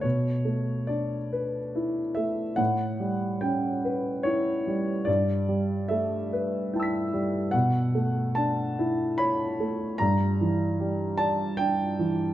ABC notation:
X:1
M:3/4
L:1/8
Q:1/4=73
K:Bm
V:1 name="Grand piano"
c2 d2 z e | f2 g2 c2 | d2 e2 [gae'b']2 | f2 a2 b2 |
_b3 a g2 |]
V:2 name="Grand piano"
B,, A, D B E A, | A,, G, C B E G, | G,, G, A, B E G, | B,, A, D E c A, |
G,, E, G, d D E, |]